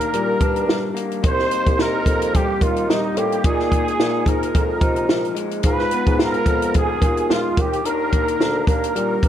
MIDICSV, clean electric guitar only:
0, 0, Header, 1, 2, 480
1, 0, Start_track
1, 0, Key_signature, -3, "major"
1, 0, Tempo, 551471
1, 1075, Time_signature, 4, 2, 24, 8
1, 8080, End_track
2, 0, Start_track
2, 0, Title_t, "Clean electric guitar"
2, 0, Program_c, 0, 27
2, 0, Note_on_c, 0, 51, 70
2, 0, Note_on_c, 0, 58, 47
2, 0, Note_on_c, 0, 62, 52
2, 116, Note_on_c, 0, 55, 56
2, 341, Note_off_c, 0, 62, 0
2, 351, Note_on_c, 0, 62, 51
2, 581, Note_off_c, 0, 55, 0
2, 585, Note_on_c, 0, 55, 51
2, 820, Note_off_c, 0, 58, 0
2, 823, Note_on_c, 0, 58, 49
2, 1064, Note_off_c, 0, 51, 0
2, 1068, Note_on_c, 0, 48, 69
2, 1069, Note_off_c, 0, 62, 0
2, 1072, Note_on_c, 0, 63, 62
2, 1308, Note_off_c, 0, 58, 0
2, 1312, Note_on_c, 0, 58, 46
2, 1541, Note_off_c, 0, 63, 0
2, 1544, Note_on_c, 0, 63, 56
2, 1788, Note_off_c, 0, 58, 0
2, 1792, Note_on_c, 0, 58, 47
2, 2033, Note_off_c, 0, 55, 0
2, 2036, Note_on_c, 0, 55, 67
2, 2280, Note_off_c, 0, 63, 0
2, 2283, Note_on_c, 0, 63, 59
2, 2499, Note_off_c, 0, 55, 0
2, 2509, Note_on_c, 0, 55, 56
2, 2756, Note_off_c, 0, 58, 0
2, 2760, Note_on_c, 0, 58, 56
2, 2993, Note_off_c, 0, 48, 0
2, 3001, Note_on_c, 0, 46, 75
2, 3007, Note_off_c, 0, 63, 0
2, 3010, Note_on_c, 0, 63, 65
2, 3046, Note_off_c, 0, 55, 0
2, 3229, Note_off_c, 0, 58, 0
2, 3233, Note_on_c, 0, 56, 56
2, 3469, Note_off_c, 0, 63, 0
2, 3472, Note_on_c, 0, 63, 55
2, 3714, Note_off_c, 0, 56, 0
2, 3717, Note_on_c, 0, 56, 48
2, 3959, Note_on_c, 0, 53, 57
2, 4183, Note_off_c, 0, 63, 0
2, 4187, Note_on_c, 0, 63, 63
2, 4436, Note_off_c, 0, 53, 0
2, 4440, Note_on_c, 0, 53, 51
2, 4650, Note_off_c, 0, 56, 0
2, 4654, Note_on_c, 0, 56, 53
2, 4897, Note_on_c, 0, 44, 67
2, 4904, Note_off_c, 0, 63, 0
2, 4907, Note_on_c, 0, 65, 61
2, 4919, Note_off_c, 0, 46, 0
2, 4958, Note_off_c, 0, 56, 0
2, 4971, Note_off_c, 0, 53, 0
2, 5157, Note_on_c, 0, 59, 51
2, 5370, Note_off_c, 0, 65, 0
2, 5381, Note_on_c, 0, 65, 62
2, 5618, Note_off_c, 0, 59, 0
2, 5628, Note_on_c, 0, 59, 43
2, 5880, Note_on_c, 0, 51, 58
2, 6109, Note_off_c, 0, 65, 0
2, 6130, Note_on_c, 0, 65, 57
2, 6358, Note_on_c, 0, 56, 57
2, 6583, Note_off_c, 0, 51, 0
2, 6587, Note_on_c, 0, 51, 66
2, 6640, Note_off_c, 0, 44, 0
2, 6645, Note_off_c, 0, 59, 0
2, 6650, Note_off_c, 0, 56, 0
2, 6656, Note_off_c, 0, 65, 0
2, 6823, Note_off_c, 0, 51, 0
2, 6826, Note_on_c, 0, 51, 67
2, 6840, Note_on_c, 0, 62, 65
2, 7076, Note_on_c, 0, 58, 52
2, 7307, Note_off_c, 0, 62, 0
2, 7317, Note_on_c, 0, 62, 63
2, 7557, Note_off_c, 0, 58, 0
2, 7560, Note_on_c, 0, 58, 53
2, 7791, Note_on_c, 0, 55, 68
2, 8023, Note_off_c, 0, 62, 0
2, 8034, Note_on_c, 0, 62, 58
2, 8080, Note_off_c, 0, 51, 0
2, 8080, Note_off_c, 0, 55, 0
2, 8080, Note_off_c, 0, 58, 0
2, 8080, Note_off_c, 0, 62, 0
2, 8080, End_track
0, 0, End_of_file